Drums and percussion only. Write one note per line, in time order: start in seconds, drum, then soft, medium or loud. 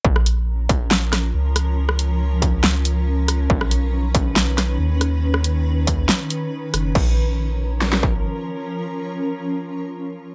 0.05 kick loud
0.16 cross-stick medium
0.26 closed hi-hat medium
0.69 kick loud
0.69 closed hi-hat medium
0.91 snare loud
1.13 cross-stick medium
1.13 snare medium
1.13 closed hi-hat medium
1.56 cross-stick medium
1.56 closed hi-hat medium
1.89 cross-stick medium
1.99 closed hi-hat medium
2.42 kick medium
2.42 closed hi-hat medium
2.64 snare loud
2.85 closed hi-hat medium
3.28 cross-stick medium
3.28 closed hi-hat medium
3.50 kick loud
3.61 cross-stick medium
3.71 closed hi-hat medium
4.15 kick loud
4.15 closed hi-hat medium
4.36 snare loud
4.58 cross-stick medium
4.58 snare medium
4.58 closed hi-hat medium
5.01 cross-stick medium
5.01 closed hi-hat medium
5.34 cross-stick medium
5.44 closed hi-hat medium
5.87 kick medium
5.87 closed hi-hat medium
6.09 snare loud
6.30 closed hi-hat medium
6.74 cross-stick medium
6.74 closed hi-hat medium
6.95 kick loud
6.95 crash medium
7.82 snare medium
7.93 snare medium
8.03 kick medium